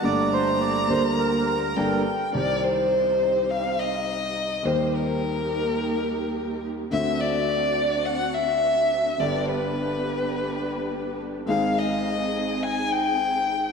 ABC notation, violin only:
X:1
M:4/4
L:1/8
Q:1/4=105
K:Gm
V:1 name="Violin"
b6 g2 | [K:Cm] d c3 f e3 | c B6 z | =e d3 ^f e3 |
d =B6 z | f e3 a g3 |]